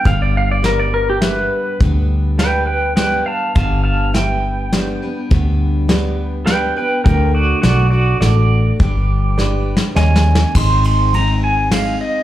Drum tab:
CC |------------------|------------------|------------------|------------------|
RD |------------------|------------------|------------------|------------------|
HH |x-----x-----x-----|x-----x-----x-----|x-----x-----x-----|x-----x-----x-----|
SD |------o-----o-----|------o-----o-----|------o-----o-----|------o-----o-----|
BD |o-----------------|o-----------------|o-----------------|o-----------------|

CC |------------------|------------------|x-----------------|
RD |------------------|------------------|---x--x-----x-----|
HH |x-----x-----x-----|x-----------------|------------------|
SD |------o-----o-----|------o---o-o-o-o-|------------o-----|
BD |o-----------------|o-----------------|o-----------------|